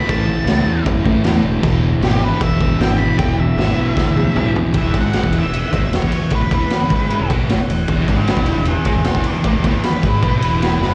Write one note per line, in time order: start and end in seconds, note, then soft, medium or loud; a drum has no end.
0.00 0.10 B5 medium
0.05 0.38 A1 medium
0.05 0.25 A2 loud
0.05 0.27 E3 loud
0.05 0.27 A3 loud
0.05 kick loud
0.05 crash medium
0.10 0.85 A5 loud
0.26 0.43 A2 medium
0.26 0.46 E3 medium
0.26 0.45 A3 loud
0.45 0.61 C#2 loud
0.45 0.64 A2 medium
0.45 0.66 E3 loud
0.45 0.66 A3 medium
0.45 snare loud
0.45 crash medium
0.65 0.81 E2 medium
0.65 0.84 A2 medium
0.65 0.85 E3 loud
0.65 0.84 A3 loud
0.85 1.15 F#2 medium
0.85 1.03 A2 medium
0.85 1.05 E3 loud
0.85 1.05 A3 loud
0.85 kick loud
0.85 crash medium
1.04 1.23 A2 loud
1.04 1.24 E3 medium
1.04 1.24 A3 medium
1.04 kick medium
1.23 1.39 E2 loud
1.23 1.43 A2 medium
1.23 1.44 E3 loud
1.23 1.44 A3 loud
1.23 snare loud
1.23 crash medium
1.42 1.58 E1 loud
1.42 1.61 E2 medium
1.42 1.61 B2 medium
1.42 1.63 E3 loud
1.62 1.93 E1 loud
1.62 1.82 E2 loud
1.62 1.82 B2 loud
1.62 1.84 E3 loud
1.62 kick loud
1.62 crash medium
1.82 2.01 E2 medium
1.82 2.01 B2 medium
1.82 2.03 E3 loud
2.00 2.30 G#1 loud
2.00 2.21 E2 medium
2.00 2.21 B2 loud
2.00 2.23 E3 loud
2.00 2.22 G4 medium
2.00 snare loud
2.00 crash medium
2.21 2.40 E2 medium
2.21 2.40 B2 loud
2.21 2.41 E3 loud
2.21 2.42 B4 loud
2.40 2.70 E1 medium
2.40 2.60 E2 loud
2.40 2.61 B2 loud
2.40 2.61 E3 loud
2.40 2.79 E5 medium
2.40 kick loud
2.40 crash medium
2.60 2.79 E2 medium
2.60 2.79 B2 medium
2.60 2.80 E3 loud
2.60 kick medium
2.78 3.08 G#1 medium
2.78 2.98 E2 loud
2.78 2.98 B2 loud
2.78 2.99 E3 loud
2.78 3.00 G5 medium
2.78 snare loud
2.78 crash medium
2.98 3.17 E2 medium
2.98 3.18 B2 medium
2.98 3.18 E3 medium
2.98 3.18 B5 loud
3.17 3.48 E1 medium
3.17 3.37 E2 medium
3.17 3.38 B2 loud
3.17 3.39 E3 loud
3.17 3.37 G5 medium
3.17 kick loud
3.17 crash medium
3.39 3.56 E2 medium
3.39 3.57 B2 medium
3.39 3.58 E3 medium
3.39 4.53 E5 loud
3.56 3.71 G#1 loud
3.56 3.75 E2 medium
3.56 3.76 B2 loud
3.56 snare loud
3.56 crash medium
3.60 3.77 E3 medium
3.75 3.91 B1 medium
3.75 3.94 E2 medium
3.75 3.95 B2 medium
3.75 3.96 E3 medium
3.95 4.26 D2 medium
3.95 4.14 E2 medium
3.95 4.16 B2 loud
3.95 4.15 E3 loud
3.95 kick loud
3.95 snare medium
4.15 4.34 E2 medium
4.15 4.35 B2 medium
4.15 4.35 E3 medium
4.15 high tom medium
4.35 4.65 B1 loud
4.35 4.52 E2 medium
4.35 4.53 B2 loud
4.35 4.53 E3 loud
4.35 mid tom medium
4.54 4.72 E2 medium
4.54 4.73 B2 medium
4.54 4.73 E3 medium
4.54 floor tom loud
4.74 4.93 E1 medium
4.74 4.93 E2 medium
4.74 4.94 E3 loud
4.74 kick loud
4.74 ride loud
4.78 4.95 E5 medium
4.94 5.22 G#1 loud
4.94 5.23 G#2 medium
4.94 5.23 G#3 loud
4.94 kick loud
4.94 ride medium
5.01 5.35 F#5 medium
5.13 snare loud
5.13 ride loud
5.23 5.42 E1 medium
5.23 5.43 E2 medium
5.23 5.44 E3 medium
5.23 kick loud
5.32 ride medium
5.38 5.93 E5 medium
5.44 5.62 E1 medium
5.44 5.59 E2 medium
5.53 ride loud
5.72 5.82 G#1 loud
5.72 5.82 G#2 medium
5.72 5.83 G#3 loud
5.72 kick loud
5.72 ride medium
5.83 6.01 E1 medium
5.83 5.98 E2 medium
5.93 6.32 C#5 medium
5.93 snare loud
5.93 ride loud
6.02 6.10 E1 medium
6.02 6.12 E2 medium
6.02 6.12 E3 medium
6.02 kick loud
6.10 muted fingered electric bass stroke soft
6.10 muted distorted electric guitar stroke medium
6.10 ride medium
6.22 muted distorted electric guitar stroke medium
6.22 muted fingered electric bass stroke soft
6.30 6.39 A1 medium
6.30 6.41 A2 loud
6.30 6.41 A3 loud
6.30 kick loud
6.30 ride loud
6.35 6.52 B4 medium
6.40 6.49 E1 medium
6.40 6.50 E2 medium
6.51 6.60 E1 loud
6.51 6.60 E2 medium
6.51 6.61 E3 loud
6.51 7.28 B4 medium
6.51 kick loud
6.51 ride medium
6.62 muted distorted electric guitar stroke medium
6.70 snare loud
6.70 ride medium
6.80 muted fingered electric bass stroke soft
6.80 muted distorted electric guitar stroke medium
6.90 7.17 G#1 loud
6.90 7.19 G#2 medium
6.90 7.19 G#3 medium
6.90 kick medium
6.90 ride medium
7.10 ride medium
7.18 7.28 E1 medium
7.18 7.29 E2 medium
7.29 7.47 B1 medium
7.29 7.48 B2 medium
7.29 7.49 B3 loud
7.29 kick loud
7.29 ride medium
7.48 7.56 A1 medium
7.48 7.58 A2 loud
7.48 7.58 A3 loud
7.48 snare loud
7.48 ride medium
7.57 7.67 E1 medium
7.57 7.68 E2 medium
7.67 7.86 E1 medium
7.67 7.85 E2 medium
7.67 ride medium
7.88 8.06 E1 medium
7.88 8.07 E2 loud
7.88 8.07 E3 loud
7.88 kick loud
7.88 ride loud
8.08 8.35 G#1 loud
8.08 8.36 G#2 medium
8.08 8.37 G#3 loud
8.08 8.28 B4 medium
8.08 8.28 G5 medium
8.08 kick loud
8.08 ride medium
8.28 8.47 B4 medium
8.28 snare loud
8.28 ride medium
8.32 8.48 G5 medium
8.36 8.54 E1 medium
8.36 8.54 E2 medium
8.36 8.56 E3 loud
8.36 kick loud
8.46 ride medium
8.52 8.71 E2 medium
8.52 8.68 B4 loud
8.52 8.68 G5 medium
8.57 8.75 E1 medium
8.65 8.86 G#4 medium
8.65 ride loud
8.71 8.87 E5 medium
8.85 8.94 G#1 loud
8.85 8.95 G#2 medium
8.85 8.95 G#3 loud
8.85 9.05 G#4 medium
8.85 9.04 E5 medium
8.85 kick loud
8.85 ride medium
8.95 9.13 E1 medium
8.95 9.11 E2 medium
9.04 9.24 G#4 medium
9.04 9.24 E5 medium
9.04 snare loud
9.04 ride loud
9.15 9.24 E1 loud
9.15 9.23 E2 medium
9.15 9.25 E3 loud
9.15 kick loud
9.24 9.44 B4 medium
9.24 9.45 D5 medium
9.24 muted distorted electric guitar stroke medium
9.24 muted fingered electric bass stroke soft
9.24 ride medium
9.35 muted distorted electric guitar stroke medium
9.35 muted fingered electric bass stroke soft
9.44 9.53 A1 medium
9.44 9.54 A2 loud
9.44 9.54 A3 loud
9.44 9.64 B4 medium
9.44 kick loud
9.44 ride loud
9.48 9.65 D5 medium
9.54 9.63 E1 medium
9.54 9.62 E2 medium
9.63 9.73 E1 loud
9.63 9.72 E2 medium
9.63 9.73 E3 medium
9.63 kick loud
9.63 ride medium
9.67 9.83 B4 medium
9.67 9.84 D5 medium
9.73 muted distorted electric guitar stroke medium
9.83 10.94 B4 loud
9.83 snare loud
9.83 ride medium
9.91 muted distorted electric guitar stroke medium
9.91 muted fingered electric bass stroke soft
10.01 10.22 G#1 loud
10.01 10.21 G#2 loud
10.01 10.22 G#3 loud
10.01 kick medium
10.01 ride medium
10.20 10.41 B1 medium
10.20 10.40 B2 medium
10.20 10.41 B3 loud
10.20 kick loud
10.20 ride medium
10.40 10.78 E1 medium
10.40 10.79 E2 medium
10.40 10.80 E3 medium
10.40 ride medium
10.62 snare loud
10.62 ride medium
10.80 10.94 F#1 loud
10.80 10.94 F#2 medium
10.80 10.94 F#3 loud
10.80 snare medium